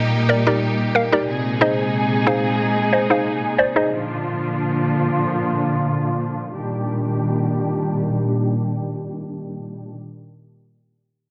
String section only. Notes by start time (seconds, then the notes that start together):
Already playing: A#2 G3 A#3 D#4 G4
1.28 C3 G#3 D#4 G#4
3.92 A#2 D3 F3 D4 F4
6.55 A#2 D#3 G3 D4 G4